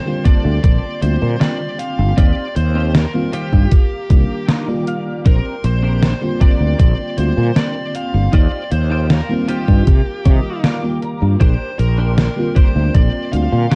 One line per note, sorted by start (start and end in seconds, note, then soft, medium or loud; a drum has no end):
0.00 3.68 G4 medium
0.00 0.25 C5 medium
0.00 2.15 D5 medium
0.00 3.68 C6 medium
0.05 0.97 D3 medium
0.05 0.97 G3 medium
0.05 0.98 A#3 medium
0.05 0.98 C4 medium
0.05 0.99 F4 medium
0.25 0.83 A#3 medium
0.25 0.83 C4 medium
0.25 0.83 D4 medium
0.25 0.84 A4 loud
0.25 0.62 D5 loud
0.25 kick loud
0.25 closed hi-hat medium
0.45 0.58 D2 medium
0.64 0.77 A#1 loud
0.64 1.02 D5 loud
0.64 kick loud
0.64 closed hi-hat medium
1.01 1.16 D2 medium
1.01 2.15 D3 medium
1.01 2.15 G3 medium
1.01 2.16 A#3 medium
1.01 2.16 C4 medium
1.01 2.16 F4 medium
1.01 1.40 C5 medium
1.01 closed hi-hat medium
1.22 1.35 A#2 loud
1.40 1.60 A#3 medium
1.40 1.60 C4 medium
1.40 1.60 D4 medium
1.40 1.61 G4 loud
1.40 1.76 D5 loud
1.40 snare loud
1.40 closed hi-hat medium
1.79 2.19 F5 loud
1.79 muted clean electric guitar stroke soft
1.79 closed hi-hat medium
1.99 2.12 G1 loud
2.17 2.31 D#2 loud
2.17 2.46 C4 loud
2.17 2.47 D#4 loud
2.17 2.47 F4 loud
2.17 2.47 G4 loud
2.17 2.56 D5 loud
2.17 5.23 F5 medium
2.17 kick loud
2.17 closed hi-hat medium
2.56 3.04 D#2 loud
2.56 2.92 C5 loud
2.56 closed hi-hat medium
2.75 3.04 C4 medium
2.75 3.04 D#4 medium
2.75 3.05 F4 medium
2.75 3.05 G4 medium
2.95 3.33 A#4 loud
2.95 snare loud
2.95 closed hi-hat medium
3.14 3.69 D#3 medium
3.14 3.69 G3 medium
3.14 3.69 A#3 medium
3.14 3.70 C4 medium
3.14 3.70 F4 loud
3.32 3.71 C4 medium
3.32 3.72 D#4 medium
3.32 3.72 F4 medium
3.32 4.45 G4 medium
3.32 3.72 G4 loud
3.32 closed hi-hat medium
3.53 3.66 G2 medium
3.53 kick medium
3.71 5.24 A#4 medium
3.71 5.24 D6 medium
3.71 kick loud
3.71 closed hi-hat medium
4.10 4.23 C2 medium
4.10 4.63 D#3 medium
4.10 4.63 G3 medium
4.10 4.63 A#3 medium
4.10 4.64 D4 medium
4.10 4.64 F4 medium
4.10 kick loud
4.10 closed hi-hat medium
4.48 4.68 D4 medium
4.48 4.68 D#4 medium
4.48 4.68 F4 medium
4.48 4.68 A#4 loud
4.48 4.84 G5 medium
4.48 snare loud
4.48 closed hi-hat medium
4.67 5.23 D#3 medium
4.67 5.23 G3 medium
4.67 5.23 A#3 medium
4.67 5.24 F4 loud
4.67 5.23 D5 medium
4.87 5.23 F5 medium
4.87 muted clean electric guitar stroke soft
4.87 closed hi-hat medium
5.25 5.39 A#1 loud
5.25 5.54 C4 loud
5.25 5.54 D4 loud
5.25 5.55 G4 loud
5.25 9.83 G4 medium
5.25 5.66 A#4 medium
5.25 5.55 A#4 loud
5.25 8.30 D5 medium
5.25 9.83 C6 medium
5.25 kick loud
5.25 closed hi-hat medium
5.64 6.12 A#1 loud
5.64 6.41 C5 loud
5.64 closed hi-hat medium
5.83 6.12 C4 medium
5.83 6.12 D4 medium
5.83 6.12 G4 medium
5.83 6.13 A#4 loud
6.02 snare loud
6.02 closed hi-hat medium
6.20 7.13 D3 medium
6.20 7.13 G3 medium
6.20 7.13 A#3 medium
6.20 7.14 C4 medium
6.20 7.14 F4 loud
6.40 6.98 C4 medium
6.40 6.99 D4 medium
6.40 6.99 G4 medium
6.40 6.99 A#4 loud
6.40 6.77 D5 loud
6.40 kick loud
6.40 closed hi-hat medium
6.60 6.73 D2 medium
6.79 6.93 A#1 loud
6.79 7.18 D5 loud
6.79 kick loud
6.79 closed hi-hat medium
7.16 7.31 D2 medium
7.16 8.30 D3 medium
7.16 8.30 G3 medium
7.16 8.31 A#3 medium
7.16 8.31 C4 medium
7.16 8.32 F4 medium
7.16 7.56 C5 loud
7.16 closed hi-hat medium
7.37 7.50 A#2 loud
7.56 7.75 C4 medium
7.56 7.76 D4 medium
7.56 7.76 G4 medium
7.56 7.76 A#4 loud
7.56 7.96 D5 loud
7.56 snare loud
7.56 closed hi-hat medium
7.94 8.35 F5 loud
7.94 muted clean electric guitar stroke soft
7.94 closed hi-hat medium
8.14 8.27 G1 loud
8.32 8.46 D#2 loud
8.32 8.62 D#4 loud
8.32 8.62 F4 loud
8.32 8.62 G4 loud
8.32 8.63 C5 loud
8.32 8.69 D5 loud
8.32 9.86 F5 medium
8.32 kick loud
8.32 closed hi-hat medium
8.72 9.20 D#2 loud
8.72 9.08 C5 loud
8.72 closed hi-hat medium
8.90 9.19 D#4 medium
8.90 9.20 F4 medium
8.90 9.20 G4 medium
8.90 9.20 C5 medium
9.10 9.46 A#4 medium
9.10 snare loud
9.10 closed hi-hat medium
9.29 9.84 D#3 medium
9.29 9.85 G3 medium
9.29 9.85 A#3 medium
9.29 9.85 C4 medium
9.29 9.85 F4 loud
9.48 9.87 D#4 medium
9.48 9.87 F4 medium
9.48 9.87 G4 medium
9.48 10.60 G4 medium
9.48 9.87 C5 loud
9.48 closed hi-hat medium
9.68 9.81 G2 medium
9.68 kick medium
9.87 10.00 C3 medium
9.87 11.40 A#4 medium
9.87 11.40 F5 medium
9.87 11.40 D6 medium
9.87 kick loud
9.87 closed hi-hat medium
10.25 10.39 C3 loud
10.25 10.78 D#3 medium
10.25 10.79 G3 medium
10.25 10.79 A#3 medium
10.25 10.79 F4 medium
10.25 10.61 D#5 medium
10.25 kick loud
10.25 closed hi-hat medium
10.63 10.83 D#4 medium
10.63 10.83 F4 medium
10.63 10.83 A#4 medium
10.63 10.84 D5 loud
10.63 10.82 F5 medium
10.63 snare loud
10.63 closed hi-hat medium
10.83 11.38 D#3 medium
10.83 11.38 G3 medium
10.83 11.39 A#3 medium
10.83 11.39 F4 loud
10.83 11.01 G5 medium
11.02 11.38 A#5 medium
11.02 muted clean electric guitar stroke soft
11.02 closed hi-hat medium
11.22 11.35 G2 medium
11.40 11.54 A#1 loud
11.40 11.70 D4 loud
11.40 11.70 G4 loud
11.40 13.75 G4 medium
11.40 11.70 A#4 loud
11.40 11.79 C5 loud
11.40 11.70 C5 loud
11.40 13.75 D5 medium
11.40 13.75 C6 medium
11.40 kick loud
11.40 closed hi-hat medium
11.79 12.27 A#1 loud
11.79 12.55 A#4 medium
11.79 closed hi-hat medium
11.98 12.27 D4 medium
11.98 12.28 G4 medium
11.98 12.28 A#4 medium
11.98 12.28 C5 loud
12.18 snare loud
12.18 closed hi-hat medium
12.36 13.28 D3 medium
12.36 13.28 G3 medium
12.36 13.29 A#3 medium
12.36 13.29 C4 medium
12.36 13.29 F4 loud
12.56 13.14 D4 medium
12.56 13.14 G4 medium
12.56 13.14 A#4 medium
12.56 12.96 C5 medium
12.56 13.15 C5 loud
12.56 kick loud
12.56 closed hi-hat medium
12.76 12.89 D2 medium
12.94 13.08 A#1 medium
12.94 13.30 D5 loud
12.94 kick loud
12.94 closed hi-hat medium
13.31 13.46 D2 medium
13.31 13.75 D3 medium
13.31 13.75 G3 medium
13.31 13.75 A#3 medium
13.31 13.75 C4 medium
13.31 13.75 F4 medium
13.31 13.75 F5 loud
13.31 closed hi-hat medium
13.52 13.66 A#2 loud
13.71 13.75 D4 medium
13.71 13.75 G4 medium
13.71 13.75 A#4 medium
13.71 snare loud
13.71 closed hi-hat medium